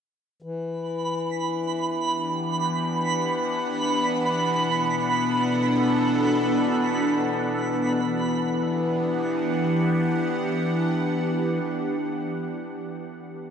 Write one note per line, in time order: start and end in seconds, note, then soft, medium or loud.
0.39 4.21 E3 medium
0.39 8.00 E3 medium
0.39 8.04 B5 medium
0.69 8.01 B3 medium
0.69 8.02 D4 medium
1.45 4.21 G4 medium
2.10 8.02 F#5 medium
4.17 8.00 B2 medium
4.80 8.02 A4 medium
8.02 11.59 E3 medium
8.02 11.60 E3 medium
8.17 11.74 B3 medium
8.35 11.92 D4 medium
8.47 12.04 G4 medium
8.61 12.19 F#5 medium